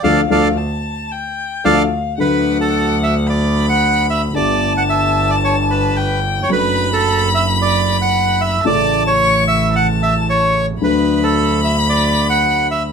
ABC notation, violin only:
X:1
M:4/4
L:1/8
Q:1/4=111
K:Dm
V:1 name="Violin"
f2 a2 g2 f2 | [K:D] f4 b4 | a6 g2 | b8 |
a2 c'2 a3 z | b8 |]